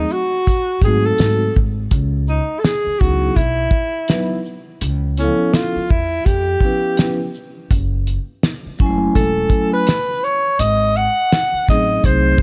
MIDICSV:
0, 0, Header, 1, 6, 480
1, 0, Start_track
1, 0, Key_signature, 4, "minor"
1, 0, Tempo, 722892
1, 1278, Time_signature, 4, 2, 24, 8
1, 8250, End_track
2, 0, Start_track
2, 0, Title_t, "Alto saxophone"
2, 0, Program_c, 0, 65
2, 0, Note_on_c, 0, 63, 78
2, 78, Note_on_c, 0, 66, 98
2, 88, Note_off_c, 0, 63, 0
2, 542, Note_on_c, 0, 67, 69
2, 552, Note_off_c, 0, 66, 0
2, 557, Note_on_c, 0, 68, 101
2, 567, Note_off_c, 0, 67, 0
2, 701, Note_on_c, 0, 69, 96
2, 711, Note_off_c, 0, 68, 0
2, 1035, Note_off_c, 0, 69, 0
2, 1520, Note_on_c, 0, 63, 77
2, 1722, Note_on_c, 0, 69, 74
2, 1732, Note_off_c, 0, 63, 0
2, 1751, Note_on_c, 0, 68, 96
2, 1761, Note_off_c, 0, 69, 0
2, 1990, Note_on_c, 0, 66, 84
2, 2000, Note_off_c, 0, 68, 0
2, 2230, Note_on_c, 0, 64, 85
2, 2240, Note_off_c, 0, 66, 0
2, 2954, Note_off_c, 0, 64, 0
2, 3445, Note_on_c, 0, 61, 75
2, 3685, Note_on_c, 0, 65, 72
2, 3695, Note_off_c, 0, 61, 0
2, 3921, Note_on_c, 0, 64, 81
2, 3931, Note_off_c, 0, 65, 0
2, 4152, Note_on_c, 0, 67, 92
2, 4162, Note_off_c, 0, 64, 0
2, 4875, Note_off_c, 0, 67, 0
2, 6079, Note_on_c, 0, 69, 97
2, 6440, Note_off_c, 0, 69, 0
2, 6462, Note_on_c, 0, 71, 101
2, 6796, Note_on_c, 0, 73, 100
2, 6806, Note_off_c, 0, 71, 0
2, 7036, Note_on_c, 0, 75, 103
2, 7046, Note_off_c, 0, 73, 0
2, 7282, Note_on_c, 0, 78, 102
2, 7292, Note_off_c, 0, 75, 0
2, 7759, Note_off_c, 0, 78, 0
2, 7766, Note_on_c, 0, 75, 96
2, 8003, Note_on_c, 0, 72, 88
2, 8013, Note_off_c, 0, 75, 0
2, 8240, Note_off_c, 0, 72, 0
2, 8250, End_track
3, 0, Start_track
3, 0, Title_t, "Vibraphone"
3, 0, Program_c, 1, 11
3, 550, Note_on_c, 1, 54, 62
3, 555, Note_on_c, 1, 57, 59
3, 560, Note_on_c, 1, 60, 61
3, 565, Note_on_c, 1, 63, 63
3, 572, Note_on_c, 1, 66, 75
3, 912, Note_off_c, 1, 54, 0
3, 915, Note_off_c, 1, 57, 0
3, 917, Note_off_c, 1, 60, 0
3, 920, Note_off_c, 1, 63, 0
3, 923, Note_off_c, 1, 66, 0
3, 1994, Note_on_c, 1, 54, 61
3, 1999, Note_on_c, 1, 59, 53
3, 2004, Note_on_c, 1, 63, 58
3, 2011, Note_on_c, 1, 64, 53
3, 2015, Note_on_c, 1, 68, 72
3, 2181, Note_off_c, 1, 54, 0
3, 2183, Note_off_c, 1, 59, 0
3, 2186, Note_off_c, 1, 63, 0
3, 2189, Note_off_c, 1, 64, 0
3, 2191, Note_off_c, 1, 68, 0
3, 2712, Note_on_c, 1, 54, 76
3, 2716, Note_on_c, 1, 59, 67
3, 2720, Note_on_c, 1, 63, 65
3, 2727, Note_on_c, 1, 64, 62
3, 2731, Note_on_c, 1, 71, 84
3, 2900, Note_off_c, 1, 54, 0
3, 2902, Note_off_c, 1, 59, 0
3, 2904, Note_off_c, 1, 63, 0
3, 2907, Note_off_c, 1, 64, 0
3, 2909, Note_off_c, 1, 71, 0
3, 3436, Note_on_c, 1, 64, 53
3, 3442, Note_on_c, 1, 59, 57
3, 3447, Note_on_c, 1, 61, 61
3, 3452, Note_off_c, 1, 64, 0
3, 3452, Note_on_c, 1, 64, 65
3, 3457, Note_on_c, 1, 69, 75
3, 3480, Note_on_c, 1, 53, 71
3, 3798, Note_off_c, 1, 59, 0
3, 3801, Note_off_c, 1, 61, 0
3, 3803, Note_off_c, 1, 64, 0
3, 3806, Note_off_c, 1, 69, 0
3, 3817, Note_off_c, 1, 53, 0
3, 4395, Note_on_c, 1, 53, 65
3, 4400, Note_on_c, 1, 59, 58
3, 4405, Note_on_c, 1, 61, 59
3, 4411, Note_on_c, 1, 64, 59
3, 4416, Note_on_c, 1, 71, 70
3, 4755, Note_off_c, 1, 53, 0
3, 4757, Note_off_c, 1, 59, 0
3, 4760, Note_off_c, 1, 61, 0
3, 4763, Note_off_c, 1, 64, 0
3, 4766, Note_off_c, 1, 71, 0
3, 5833, Note_on_c, 1, 54, 83
3, 5840, Note_on_c, 1, 56, 59
3, 5843, Note_on_c, 1, 61, 72
3, 5849, Note_on_c, 1, 64, 74
3, 5856, Note_on_c, 1, 80, 80
3, 5883, Note_on_c, 1, 57, 71
3, 5892, Note_off_c, 1, 56, 0
3, 6519, Note_off_c, 1, 54, 0
3, 6524, Note_off_c, 1, 61, 0
3, 6527, Note_off_c, 1, 64, 0
3, 6530, Note_off_c, 1, 80, 0
3, 6544, Note_off_c, 1, 57, 0
3, 7746, Note_on_c, 1, 54, 77
3, 7752, Note_on_c, 1, 57, 63
3, 7760, Note_on_c, 1, 60, 63
3, 7762, Note_on_c, 1, 63, 73
3, 7769, Note_on_c, 1, 68, 76
3, 8250, Note_off_c, 1, 54, 0
3, 8250, Note_off_c, 1, 57, 0
3, 8250, Note_off_c, 1, 60, 0
3, 8250, Note_off_c, 1, 63, 0
3, 8250, Note_off_c, 1, 68, 0
3, 8250, End_track
4, 0, Start_track
4, 0, Title_t, "Upright bass"
4, 0, Program_c, 2, 32
4, 541, Note_on_c, 2, 44, 89
4, 734, Note_off_c, 2, 44, 0
4, 792, Note_on_c, 2, 44, 88
4, 981, Note_off_c, 2, 44, 0
4, 1038, Note_on_c, 2, 32, 87
4, 1225, Note_off_c, 2, 32, 0
4, 1272, Note_on_c, 2, 37, 100
4, 1576, Note_off_c, 2, 37, 0
4, 1998, Note_on_c, 2, 37, 76
4, 2184, Note_off_c, 2, 37, 0
4, 2234, Note_on_c, 2, 35, 87
4, 2422, Note_off_c, 2, 35, 0
4, 3197, Note_on_c, 2, 37, 98
4, 3499, Note_off_c, 2, 37, 0
4, 3920, Note_on_c, 2, 40, 78
4, 4106, Note_off_c, 2, 40, 0
4, 4157, Note_on_c, 2, 41, 100
4, 4344, Note_off_c, 2, 41, 0
4, 5116, Note_on_c, 2, 30, 104
4, 5419, Note_off_c, 2, 30, 0
4, 5842, Note_on_c, 2, 30, 80
4, 6027, Note_off_c, 2, 30, 0
4, 6076, Note_on_c, 2, 28, 84
4, 6263, Note_off_c, 2, 28, 0
4, 7033, Note_on_c, 2, 32, 98
4, 7336, Note_off_c, 2, 32, 0
4, 7758, Note_on_c, 2, 33, 75
4, 7944, Note_off_c, 2, 33, 0
4, 7993, Note_on_c, 2, 36, 97
4, 8181, Note_off_c, 2, 36, 0
4, 8250, End_track
5, 0, Start_track
5, 0, Title_t, "Muted upright bass strokes"
5, 1902, Note_on_c, 9, 29, 48
5, 1968, Note_off_c, 9, 29, 0
5, 3824, Note_on_c, 9, 29, 48
5, 3891, Note_off_c, 9, 29, 0
5, 5749, Note_on_c, 9, 29, 50
5, 5816, Note_off_c, 9, 29, 0
5, 7660, Note_on_c, 9, 29, 45
5, 7726, Note_off_c, 9, 29, 0
5, 8250, End_track
6, 0, Start_track
6, 0, Title_t, "Drums"
6, 67, Note_on_c, 9, 82, 51
6, 134, Note_off_c, 9, 82, 0
6, 314, Note_on_c, 9, 36, 76
6, 318, Note_on_c, 9, 42, 77
6, 380, Note_off_c, 9, 36, 0
6, 385, Note_off_c, 9, 42, 0
6, 542, Note_on_c, 9, 36, 91
6, 545, Note_on_c, 9, 42, 60
6, 545, Note_on_c, 9, 82, 58
6, 608, Note_off_c, 9, 36, 0
6, 611, Note_off_c, 9, 42, 0
6, 611, Note_off_c, 9, 82, 0
6, 786, Note_on_c, 9, 42, 64
6, 797, Note_on_c, 9, 38, 111
6, 852, Note_off_c, 9, 42, 0
6, 863, Note_off_c, 9, 38, 0
6, 1031, Note_on_c, 9, 82, 52
6, 1038, Note_on_c, 9, 36, 87
6, 1098, Note_off_c, 9, 82, 0
6, 1105, Note_off_c, 9, 36, 0
6, 1269, Note_on_c, 9, 42, 94
6, 1271, Note_on_c, 9, 36, 98
6, 1336, Note_off_c, 9, 42, 0
6, 1337, Note_off_c, 9, 36, 0
6, 1511, Note_on_c, 9, 82, 43
6, 1578, Note_off_c, 9, 82, 0
6, 1756, Note_on_c, 9, 38, 102
6, 1756, Note_on_c, 9, 42, 67
6, 1823, Note_off_c, 9, 38, 0
6, 1823, Note_off_c, 9, 42, 0
6, 1988, Note_on_c, 9, 82, 50
6, 1998, Note_on_c, 9, 36, 93
6, 2055, Note_off_c, 9, 82, 0
6, 2065, Note_off_c, 9, 36, 0
6, 2234, Note_on_c, 9, 36, 73
6, 2236, Note_on_c, 9, 42, 75
6, 2300, Note_off_c, 9, 36, 0
6, 2302, Note_off_c, 9, 42, 0
6, 2463, Note_on_c, 9, 36, 99
6, 2468, Note_on_c, 9, 82, 54
6, 2529, Note_off_c, 9, 36, 0
6, 2534, Note_off_c, 9, 82, 0
6, 2709, Note_on_c, 9, 42, 73
6, 2720, Note_on_c, 9, 38, 103
6, 2775, Note_off_c, 9, 42, 0
6, 2786, Note_off_c, 9, 38, 0
6, 2956, Note_on_c, 9, 82, 55
6, 3022, Note_off_c, 9, 82, 0
6, 3195, Note_on_c, 9, 42, 87
6, 3262, Note_off_c, 9, 42, 0
6, 3436, Note_on_c, 9, 42, 44
6, 3436, Note_on_c, 9, 82, 47
6, 3503, Note_off_c, 9, 42, 0
6, 3503, Note_off_c, 9, 82, 0
6, 3676, Note_on_c, 9, 38, 98
6, 3676, Note_on_c, 9, 42, 63
6, 3742, Note_off_c, 9, 38, 0
6, 3742, Note_off_c, 9, 42, 0
6, 3910, Note_on_c, 9, 82, 50
6, 3921, Note_on_c, 9, 36, 96
6, 3976, Note_off_c, 9, 82, 0
6, 3988, Note_off_c, 9, 36, 0
6, 4157, Note_on_c, 9, 36, 71
6, 4161, Note_on_c, 9, 42, 80
6, 4224, Note_off_c, 9, 36, 0
6, 4227, Note_off_c, 9, 42, 0
6, 4386, Note_on_c, 9, 36, 86
6, 4390, Note_on_c, 9, 82, 54
6, 4452, Note_off_c, 9, 36, 0
6, 4456, Note_off_c, 9, 82, 0
6, 4630, Note_on_c, 9, 42, 71
6, 4642, Note_on_c, 9, 38, 106
6, 4697, Note_off_c, 9, 42, 0
6, 4708, Note_off_c, 9, 38, 0
6, 4878, Note_on_c, 9, 82, 48
6, 4944, Note_off_c, 9, 82, 0
6, 5117, Note_on_c, 9, 36, 102
6, 5118, Note_on_c, 9, 42, 94
6, 5184, Note_off_c, 9, 36, 0
6, 5185, Note_off_c, 9, 42, 0
6, 5359, Note_on_c, 9, 42, 46
6, 5359, Note_on_c, 9, 82, 41
6, 5425, Note_off_c, 9, 42, 0
6, 5425, Note_off_c, 9, 82, 0
6, 5600, Note_on_c, 9, 38, 97
6, 5600, Note_on_c, 9, 42, 62
6, 5666, Note_off_c, 9, 38, 0
6, 5666, Note_off_c, 9, 42, 0
6, 5834, Note_on_c, 9, 82, 56
6, 5843, Note_on_c, 9, 36, 91
6, 5901, Note_off_c, 9, 82, 0
6, 5909, Note_off_c, 9, 36, 0
6, 6078, Note_on_c, 9, 36, 71
6, 6082, Note_on_c, 9, 42, 82
6, 6145, Note_off_c, 9, 36, 0
6, 6148, Note_off_c, 9, 42, 0
6, 6306, Note_on_c, 9, 36, 89
6, 6312, Note_on_c, 9, 42, 55
6, 6312, Note_on_c, 9, 82, 57
6, 6373, Note_off_c, 9, 36, 0
6, 6378, Note_off_c, 9, 42, 0
6, 6378, Note_off_c, 9, 82, 0
6, 6553, Note_on_c, 9, 42, 71
6, 6564, Note_on_c, 9, 38, 113
6, 6620, Note_off_c, 9, 42, 0
6, 6631, Note_off_c, 9, 38, 0
6, 6798, Note_on_c, 9, 82, 56
6, 6864, Note_off_c, 9, 82, 0
6, 7034, Note_on_c, 9, 42, 85
6, 7101, Note_off_c, 9, 42, 0
6, 7278, Note_on_c, 9, 82, 46
6, 7345, Note_off_c, 9, 82, 0
6, 7520, Note_on_c, 9, 38, 108
6, 7520, Note_on_c, 9, 42, 65
6, 7586, Note_off_c, 9, 38, 0
6, 7586, Note_off_c, 9, 42, 0
6, 7750, Note_on_c, 9, 82, 51
6, 7759, Note_on_c, 9, 36, 90
6, 7763, Note_on_c, 9, 38, 35
6, 7816, Note_off_c, 9, 82, 0
6, 7826, Note_off_c, 9, 36, 0
6, 7830, Note_off_c, 9, 38, 0
6, 7994, Note_on_c, 9, 36, 82
6, 7999, Note_on_c, 9, 42, 84
6, 8060, Note_off_c, 9, 36, 0
6, 8065, Note_off_c, 9, 42, 0
6, 8223, Note_on_c, 9, 36, 107
6, 8227, Note_on_c, 9, 82, 60
6, 8250, Note_off_c, 9, 36, 0
6, 8250, Note_off_c, 9, 82, 0
6, 8250, End_track
0, 0, End_of_file